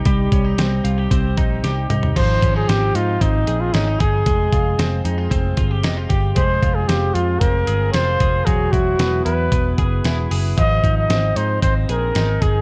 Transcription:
<<
  \new Staff \with { instrumentName = "Trumpet" } { \time 4/4 \key aes \major \tempo 4 = 114 r1 | c''8. aes'16 g'8 f'8 ees'8. f'16 ees'8 aes'8~ | aes'4. r2 r8 | c''8. aes'16 g'8 f'8 bes'4 c''4 |
gis'8 fis'4 b'4 r4. | ees''8. ees''8. c''8 c''8 bes'4 aes'8 | }
  \new Staff \with { instrumentName = "Clean electric guitar" } { \time 4/4 \key aes \major <g c' ees' g'>8 des'16 ees'16 c'8 f'16 g'16 c'8 ees'8 g'8 ees'8 | f8 des'16 ees'16 c'8 ees'8 c'8 aes'8 des'16 ees'16 aes'8 | aes8 f'8 c'8 ees'16 f'16 c'8 f'16 g'16 ees'16 f'16 g'8 | aes8 f'8 c'8 f'8 c'8 aes'8 f'8 aes'8 |
fis8 e'8 b8 e'8 b8 gis'8 e'8 gis'8 | f8 ees'8 c'8 ees'8 c'8 aes'8 ees'8 aes'8 | }
  \new Staff \with { instrumentName = "Picked electric bass" } { \clef bass \time 4/4 \key aes \major c,8 c,8 c,8 c,8 c,8 bes,,8 c,8 c,8 | aes,,8 aes,,8 aes,,8 aes,8 aes,,8 bes,,8 aes,,8 g,,8 | f,,8 f,,8 f,,8 f,8 f,,8 g,,8 f,,8 g,,8 | f,,8 f,,8 f,,8 f,8 f,,8 g,,8 f,,8 f,,8 |
e,,8 e,,8 e,,8 e,8 e,,8 fis,,8 e,,8 fis,,8 | aes,,8 aes,,8 aes,,8 aes,8 aes,,8 bes,,8 aes,,8 g,,8 | }
  \new DrumStaff \with { instrumentName = "Drums" } \drummode { \time 4/4 <hh bd>8 <hh bd>8 <hh sn>8 hh8 <hh bd>8 <hh bd>8 <hh sn>8 <hh toml>16 tomfh16 | <cymc hh bd>8 <hh bd>8 <hh sn>8 hh8 <hh bd>8 hh8 <hh sn>8 <hh bd>8 | <hh bd>8 <hh bd>8 <hh sn>8 hh8 <hh bd>8 <hh bd>8 <hh sn>8 <hh bd>8 | <hh bd>8 <hh bd>8 <hh sn>8 hh8 <hh bd>8 hh8 <hh sn>8 <hh bd>8 |
<hh bd>8 <hh bd>8 <hh sn>8 hh8 <hh bd>8 <hh bd>8 <hh sn>8 hho8 | <hh bd>8 <hh bd>8 <hh sn>8 hh8 <hh bd>8 hh8 <hh sn>8 <hh bd>8 | }
>>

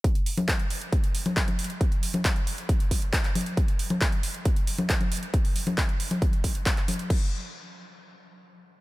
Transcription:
\new DrumStaff \with { instrumentName = "Drums" } \drummode { \time 4/4 \tempo 4 = 136 <hh bd>16 hh16 hho16 <cgho hh>16 <hc hh bd>16 hh16 hho16 hh16 <hh bd>16 hh16 hho16 <cgho hh>16 <hc hh bd>16 <cgho hh>16 hho32 hh32 hh16 | <hh bd>16 hh16 hho16 <cgho hh>16 <hc hh bd>16 hh16 hho16 hh16 <hh bd>16 hh16 <hho bd>16 hh16 <hc hh bd>16 <hc hh>16 <cgho hho>32 hh32 hh16 | <hh bd>16 hh16 hho16 <cgho hh>16 <hc hh bd>16 hh16 hho16 hh16 <hh bd>16 hh16 hho16 <cgho hh>16 <hc hh bd>16 <cgho hh>16 hho32 hh32 hh16 | <hh bd>16 hho16 hho16 <cgho hh>16 <hc hh bd>16 hh16 hho16 <cgho hh>16 <hh bd>16 hh16 <hho bd>16 hh16 <hc hh bd>16 <hc hh>16 <cgho hho>32 hh32 hh16 |
<cymc bd>4 r4 r4 r4 | }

